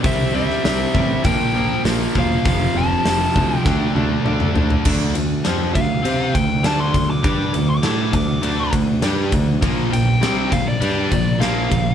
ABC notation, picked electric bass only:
X:1
M:4/4
L:1/8
Q:1/4=100
K:Dm
V:1 name="Picked electric bass" clef=bass
C,,2 C,, A,,, B,,,2 B,,, E,,, | F,,, F,,, F,,, D,, D,, D,, D,, D,, | D,, D,, F,, D,, C, D,, D,, D,, | G,, D,, A,, D,, D,, D,, G,, D,, |
B,,, B,,, C,, B,,, G,, B,,, B,,, B,,, |]